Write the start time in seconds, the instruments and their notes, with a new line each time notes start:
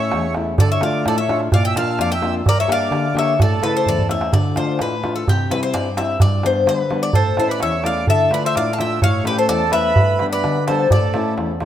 Already playing: steel-string acoustic guitar A2 A3 C#4 E4, accordion C#5, bouzouki E5
0.11 steel-string acoustic guitar E2, darbuka tek
0.34 steel-string acoustic guitar A3 C#4 E4, darbuka tek
0.58 steel-string acoustic guitar D3, accordion A4, bouzouki D5, darbuka dum
0.72 accordion C#5, bouzouki E5
0.81 steel-string acoustic guitar A3 D4 F4, accordion D5, bouzouki F5, darbuka tek
0.94 darbuka tek
1.06 steel-string acoustic guitar A2, accordion A4, bouzouki D5, darbuka tek
1.18 accordion C#5, bouzouki E5
1.29 steel-string acoustic guitar A3 D4 F4, darbuka tek
1.52 steel-string acoustic guitar A#2, accordion D5, bouzouki F5, darbuka dum
1.65 accordion E5, bouzouki G5
1.76 steel-string acoustic guitar A#3 D4 F4, accordion F5, bouzouki A5, darbuka tek
1.89 darbuka tek
1.99 steel-string acoustic guitar F2, accordion D5, bouzouki F5, darbuka tek
2.12 accordion E5, bouzouki G5
2.22 steel-string acoustic guitar A#3 D4 F4, darbuka tek
2.45 steel-string acoustic guitar G2, accordion A#4, bouzouki D5, darbuka dum
2.60 accordion C#5, bouzouki E5
2.68 steel-string acoustic guitar A#3 D4 G4, bouzouki F5, darbuka tek
2.73 accordion D5
2.82 darbuka tek
2.91 steel-string acoustic guitar D3, darbuka tek
3.14 steel-string acoustic guitar A#3 D4 G4, darbuka tek
3.19 accordion C#5, bouzouki E5
3.39 steel-string acoustic guitar A2, accordion A4, bouzouki D5, darbuka dum
3.51 darbuka tek
3.62 steel-string acoustic guitar C#3 A3 E4, bouzouki B4, darbuka tek
3.74 bouzouki C5, darbuka tek
3.86 steel-string acoustic guitar E2, bouzouki D5, darbuka dum
3.99 darbuka dum
4.09 steel-string acoustic guitar A3 C#4 E4, bouzouki E5, darbuka tek
4.21 darbuka tek
4.32 steel-string acoustic guitar D3, bouzouki D5, darbuka dum
4.56 steel-string acoustic guitar A3 D4 F4, bouzouki C5, darbuka tek
4.79 steel-string acoustic guitar A2, bouzouki B4, darbuka tek
4.93 darbuka tek
5.04 steel-string acoustic guitar A3 D4 F4, darbuka tek
5.16 bouzouki A4
5.28 steel-string acoustic guitar C3, bouzouki G4, darbuka dum
5.50 steel-string acoustic guitar G3 C4 E4, bouzouki B4, darbuka tek
5.63 bouzouki C5
5.74 steel-string acoustic guitar G2, bouzouki D5, darbuka tek
5.86 darbuka tek
5.97 steel-string acoustic guitar G3 C4 E4, bouzouki E5, darbuka tek
6.20 steel-string acoustic guitar G2, bouzouki D5, darbuka dum
6.43 steel-string acoustic guitar G3 B3 D4, bouzouki C5, darbuka tek
6.66 steel-string acoustic guitar D3, bouzouki B4, darbuka tek
6.78 darbuka tek
6.91 steel-string acoustic guitar G3 B3 D4, darbuka tek
7.03 bouzouki D5
7.13 steel-string acoustic guitar A2, accordion A4, bouzouki C5, darbuka dum
7.37 steel-string acoustic guitar A3 C#4 E4, accordion A4, bouzouki C5, darbuka tek
7.48 accordion B4, bouzouki D5, darbuka tek
7.60 steel-string acoustic guitar E2, accordion C#5, bouzouki E5, darbuka tek
7.73 darbuka tek
7.83 steel-string acoustic guitar A3 C#4 E4, accordion D5, bouzouki F5, darbuka tek
8.07 steel-string acoustic guitar D3, accordion A4, bouzouki E5, darbuka dum
8.31 steel-string acoustic guitar A3 D4 F4, accordion B4, bouzouki D5, darbuka tek
8.44 accordion C5, bouzouki E5
8.55 steel-string acoustic guitar A2, accordion D5, bouzouki F5, darbuka tek
8.67 darbuka tek
8.71 accordion F5, bouzouki A5
8.78 steel-string acoustic guitar A3 D4 F4, accordion E5, bouzouki G5, darbuka tek
9.02 steel-string acoustic guitar A2, accordion C#5, bouzouki F5, darbuka dum
9.24 steel-string acoustic guitar A3 C#4 E4, accordion G4, bouzouki B4, darbuka tek
9.38 accordion A4, bouzouki C5
9.49 steel-string acoustic guitar E2, accordion A4, bouzouki D5, darbuka tek
9.60 darbuka tek
9.72 steel-string acoustic guitar A3 C#4 E4, accordion B4, bouzouki E5, darbuka tek
9.96 steel-string acoustic guitar G2, darbuka dum
10.19 steel-string acoustic guitar G3 B3 D4, darbuka tek
10.33 accordion B4, bouzouki D5
10.44 steel-string acoustic guitar D3, darbuka tek
10.56 darbuka tek
10.67 steel-string acoustic guitar G3 B3 D4, accordion A4, bouzouki C5, darbuka tek
10.90 steel-string acoustic guitar A2, accordion A4, bouzouki D5, darbuka dum
11.02 darbuka tek
11.14 steel-string acoustic guitar A3 C#4 E4, darbuka tek
11.26 darbuka tek
11.38 steel-string acoustic guitar E2, darbuka tek
11.50 darbuka tek
11.60 steel-string acoustic guitar A3, darbuka tek